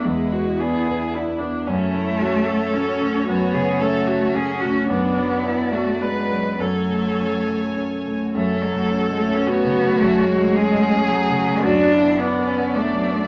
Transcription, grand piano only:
\new Staff \with { instrumentName = "Grand piano" } { \time 3/4 \key fis \minor \tempo 4 = 109 e,8 b8 d'8 b'8 d'8 b8 | fis,8 a8 cis'8 a'8 cis'8 a8 | fis,8 cis8 cis'8 a'8 cis'8 a8 | fis,8 fis8 d'8 fis'8 d'8 fis8 |
fis,8 a8 cis'8 a'8 cis'8 a8 | \tuplet 3/2 { fis,8 cis'8 a8 cis'8 a8 cis'8 a8 cis8 a8 } | \tuplet 3/2 { fis,8 cis'8 a8 cis'8 a8 cis'8 a8 cis8 a8 } | \tuplet 3/2 { fis,8 d'8 b8 d'8 b8 d'8 b8 fis8 b8 } | }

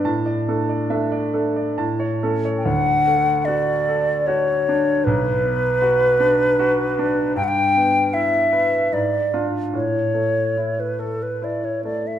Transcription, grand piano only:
\new Staff \with { instrumentName = "Grand piano" } { \time 3/4 \key d \major \tempo 4 = 74 << { a''16 d''16 a'16 d''16 e''16 d''16 a'16 d''16 a''16 cis''16 a'16 cis''16 | r2. | r2. | r2. |
r2. | } \\ { a,8 <a d'>8 <a d'>8 <a d'>8 a,8 <a cis'>8 | d,8 a8 fis'8 a'8 fis'8 d'8 | b,,8 b8 fis'8 d'8 fis'8 d'8 | g,8 b8 e'8 b'8 aes,8 <d' f'>8 |
a,8 a8 e'8 a'8 e'8 a8 | } >> }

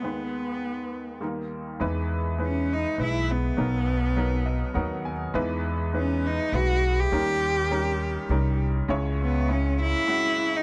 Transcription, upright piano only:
<<
  \new Staff \with { instrumentName = "Upright piano" } { \time 3/4 \key e \lydian \tempo 4 = 102 <gis b dis' b'>2 <g ais dis' ais'>4 | <gis dis' e' b'>8 r8 <gis dis' e' b'>8 r8 <gis dis' e' b'>8 r8 | <fis b dis' ais'>8 r8 <fis b dis' ais'>8 dis''8 <fis b dis' ais' fis''>8 gis''8 | <gis dis' e' b'>8 r8 <gis dis' e' b'>8 r8 <gis dis' e' b'>8 r8 |
<g cis' dis' ais'>8 r8 <g cis' dis' ais'>8 r8 <g cis' dis' ais'>8 r8 | <gis cis' e' cis''>8 r8 <gis cis' e' cis''>8 r8 <gis cis' e' fis'>8 r8 | }
  \new Staff \with { instrumentName = "Upright piano" } { \clef bass \time 3/4 \key e \lydian <dis, dis>2 <dis, dis>4 | <e, e>2. | <b,, b,>2. | <e, e>2. |
<dis, dis>2. | <cis, cis>2. | }
>>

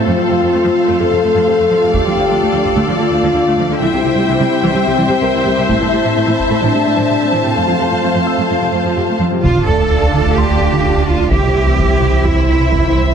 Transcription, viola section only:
\new Staff \with { instrumentName = "Viola section" } { \clef bass \time 4/4 \key d \minor \tempo 4 = 128 << { a'1 | a'1 | c''1~ | c''1 |
c''2.~ c''8 r8 | r1 | r1 | } \\ { a16 f16 c16 f16 a16 f16 r16 a16 f16 c16 a16 f16 c16 a16 f16 c16 | a16 f16 d16 f16 a16 f16 r16 a16 f16 d16 a16 f16 d16 a16 f16 d16 | e16 c16 c16 c16 e16 c16 r16 e16 c16 c16 e16 c16 c16 e16 c16 c16 | a16 e16 c16 e16 a16 e16 r16 a16 e16 c16 a16 e16 c16 a16 e16 c16 |
a16 f16 c16 f16 a16 f16 r16 a16 f16 c16 a16 f16 c16 a16 f16 c16 | d'1 | e'1 | } >> }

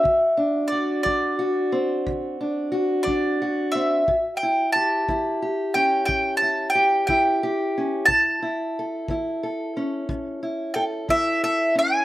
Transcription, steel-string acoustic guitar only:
\new Staff \with { instrumentName = "Steel-string acoustic guitar" } { \time 12/8 \key a \mixolydian \tempo 4. = 60 << { fis'8 d'8 fis'8 d'8 fis'8 c'4 d'8 fis'8 d'8 fis'8 c'8 | r8 e'8 g'8 e'8 g'8 cis'4 e'8 g'8 e'8 g'8 cis'8 | r8 e'8 a'8 e'8 a'8 cis'4 e'8 a'8 e'8 a'8 cis'8 | } \\ { d4 r8 fis4 r8 d4 r8 fis4 r8 | a,4 r8 e4 r8 a,4 r8 e4 r8 | a,4 r8 e4 r8 a,4 r8 e4 r8 | } >> }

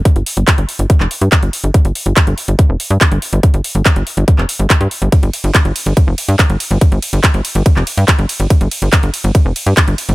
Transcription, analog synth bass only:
\new Staff \with { instrumentName = "Analog synth bass" } { \clef bass \time 4/4 \key f \mixolydian \tempo 4 = 142 r16 g,,16 r16 g,,16 r16 g,,16 r16 g,,16 r16 f,,16 r16 g,16 r16 g,,16 r16 g,,16 | r16 g,,16 r16 g,,16 r16 g,,16 r16 g,,16 r16 f,,16 r16 g,16 r16 g,,16 r16 g,,16 | r16 g,,16 r16 g,,16 r16 g,,16 r16 g,,16 r16 f,,16 r16 g,,16 r16 g,16 r16 g,,16 | r16 g,,16 r16 g,,16 r16 g,,16 r16 g,,16 r16 f,,16 r16 g,16 r16 g,,16 r16 g,,16 |
r16 g,,16 r16 g,,16 r16 g,,16 r16 g,,16 r16 f,,16 r16 g,16 r16 g,,16 r16 g,,16 | r16 g,,16 r16 g,,16 r16 g,,16 r16 g,,16 r16 f,,16 r16 g,16 r16 g,,16 r16 g,,16 | }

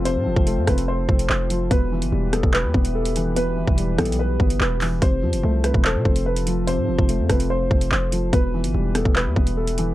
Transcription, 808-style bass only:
\new Staff \with { instrumentName = "808-style bass" } { \clef bass \time 4/4 \key e \phrygian \tempo 4 = 145 f,,16 a,16 f,,16 f,,8 f,16 f,,4 f,,8 f,,4 | e,,8. g,,16 e,,8. e,,8 e,16 e,,4.~ | e,,8. e,,8. b,,4 g,,8 e,,4 | f,,8 f,16 f,,16 c,8. e,,8 c16 f,,4.~ |
f,,16 a,16 f,,16 f,,8 f,16 f,,4 f,,8 f,,4 | e,,8. g,,16 e,,8. e,,8 e,16 e,,4. | }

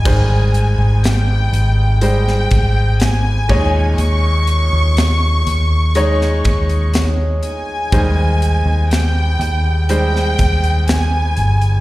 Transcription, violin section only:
\new Staff \with { instrumentName = "Violin section" } { \time 4/4 \key aes \major \tempo 4 = 61 aes''4 g''4 g''4 aes''4 | des'''2. r8 aes''8~ | aes''4 g''4 g''4 aes''4 | }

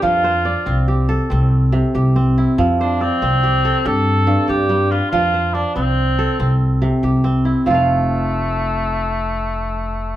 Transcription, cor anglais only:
\new Staff \with { instrumentName = "Cor anglais" } { \time 12/8 \key f \major \tempo 4. = 94 f'2 r1 | r8 d'8 c'2 a'4. g'4 f'8 | f'4 d'8 c'2 r2 r8 | a1. | }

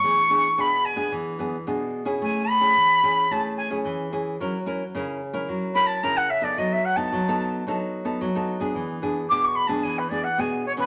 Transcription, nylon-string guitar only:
\new Staff \with { instrumentName = "Nylon-string guitar" } { \time 4/4 \key e \mixolydian \tempo 4 = 110 << { <b d' gis'>16 r16 <b d' gis'>16 r16 <b d' gis'>8. <b d' gis'>8. <b d' gis'>16 r16 <b d' gis'>8. <cis' e' gis'>16~ | <cis' e' gis'>8 r16 <cis' e' gis'>8. <cis' e' gis'>8 <cis' e' gis'>8. <cis' e' gis'>8. <cis' e' gis'>8 | <cis' e' ais'>16 r16 <cis' e' ais'>16 r16 <cis' e' ais'>8 r16 <cis' e' ais'>8. <cis' e' ais'>8 <cis' e' ais'>8 r16 <b dis' a'>16~ | <b dis' a'>8 r16 <b dis' a'>8 <b dis' a'>8. <b dis' a'>8. <b dis' a'>8 <b dis' a'>8 <b d' gis'>16~ |
<b d' gis'>8 <b d' gis'>8 <b d' gis'>8. <b d' gis'>8. <b d' gis'>16 r16 <b d' gis'>8 r16 <e b cis'>16 | } \\ { e4 b,4 e4 b,4 | a4 e4 a4 e4 | fis4 cis4 fis4 cis4 | fis4 fis4 fis4 fis4 |
e4 b,4 e4 b,4 | } >> }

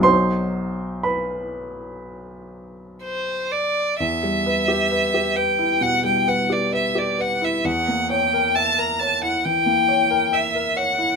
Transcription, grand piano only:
\new Staff \with { instrumentName = "Grand piano" } { \time 4/4 \key e \minor \tempo 4 = 66 << { <c'' c'''>4 <b' b''>2~ <b' b''>8 r8 | r1 | r1 | } \\ { <b,, fis dis' fis'>1 | e,16 g16 b'16 g'16 b'16 g'16 b'16 e'16 b,16 g16 b'16 g'16 b'16 g'16 b'16 e'16 | e,16 bes16 cis''16 bes'16 e''16 bes'16 cis''16 e'16 e16 bes16 cis''16 bes'16 e''16 bes'16 cis''16 e'16 | } >> }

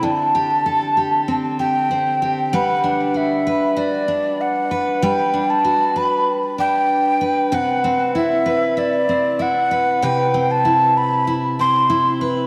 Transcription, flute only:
\new Staff \with { instrumentName = "Flute" } { \time 4/4 \key g \major \tempo 4 = 96 a''2~ a''8 g''4. | fis''4 e''4 d''4 fis''4 | g''8. a''8. b''8 r8 g''4. | fis''4 e''4 d''4 fis''4 |
g''8. a''8. b''8 r8 c'''4 r8 | }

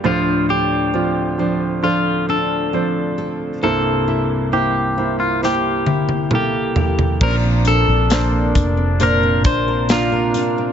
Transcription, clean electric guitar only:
\new Staff \with { instrumentName = "Clean electric guitar" } { \time 4/4 \key bes \lydian \tempo 4 = 67 f'8 g'4. f'8 a'4 r8 | a'4 g'8. f'16 g'4 g'4 | bes'8 a'4. bes'8 c''8 f'4 | }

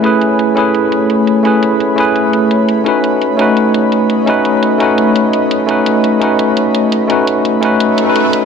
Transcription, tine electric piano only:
\new Staff \with { instrumentName = "Tine electric piano" } { \time 4/4 \key b \mixolydian \tempo 4 = 170 <a cis' e' gis' b'>4. <a cis' e' gis' b'>2~ <a cis' e' gis' b'>8 | <a cis' e' gis' b'>4. <a cis' e' gis' b'>2~ <a cis' e' gis' b'>8 | <a cis' dis' fis' b'>4. <a cis' dis' fis' b'>2~ <a cis' dis' fis' b'>8 | <a cis' dis' fis' b'>4. <a cis' dis' fis' b'>2~ <a cis' dis' fis' b'>8 |
<a cis' dis' fis' b'>4. <a cis' dis' fis' b'>2~ <a cis' dis' fis' b'>8 | <a cis' dis' fis' b'>4. <a cis' dis' fis' b'>4~ <a cis' dis' fis' b'>16 <a cis' dis' fis' b'>4~ <a cis' dis' fis' b'>16 | }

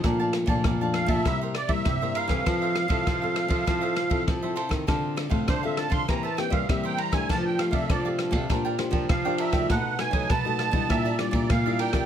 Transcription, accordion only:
\new Staff \with { instrumentName = "Accordion" } { \time 4/4 \key f \major \tempo 4 = 100 r4. f''16 e''16 e''8 d''16 e''8. f''8~ | f''2. r4 | \key d \minor r4 c''16 e''16 a''16 c'''16 bes''16 a''16 g''16 f''16 e''16 g''16 bes''16 gis''16 | a''16 g''16 f''16 e''16 d''8 r4. f''8 e''8 |
fis''8 gis''8 a''4 e''8 d''8 f''8 g''8 | }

